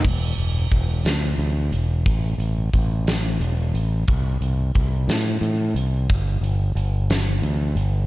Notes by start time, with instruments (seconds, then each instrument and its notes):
0.04 fingered electric bass E1, kick, crash
0.38 fingered electric bass E1, closed hi-hat
0.72 fingered electric bass E1, kick, closed hi-hat
1.05 fingered electric bass D2, snare, closed hi-hat
1.38 fingered electric bass D2, closed hi-hat
1.72 fingered electric bass E1, closed hi-hat
2.06 fingered electric bass A1, kick, closed hi-hat
2.38 fingered electric bass A1, closed hi-hat
2.73 fingered electric bass A1, kick, closed hi-hat
3.07 snare, closed hi-hat
3.40 fingered electric bass E1, closed hi-hat
3.74 fingered electric bass A1, closed hi-hat
4.08 fingered electric bass C2, kick, closed hi-hat
4.41 fingered electric bass C2, closed hi-hat
4.75 fingered electric bass C2, kick, closed hi-hat
5.08 fingered electric bass A2, snare, closed hi-hat
5.41 fingered electric bass A2, closed hi-hat
5.74 fingered electric bass C2, closed hi-hat
6.10 fingered electric bass G1, kick, closed hi-hat
6.41 fingered electric bass G1, closed hi-hat
6.75 fingered electric bass G1, closed hi-hat
7.10 snare, closed hi-hat
7.42 fingered electric bass D2, closed hi-hat
7.75 fingered electric bass G1, closed hi-hat